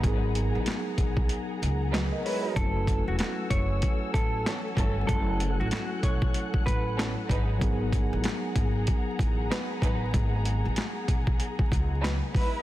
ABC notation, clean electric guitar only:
X:1
M:4/4
L:1/16
Q:"Swing 16ths" 1/4=95
K:G#phr
V:1 name="Clean electric guitar"
z16 | A3 F F2 c4 A6 | A3 F F2 c4 B3 z3 | z16 |
z16 |]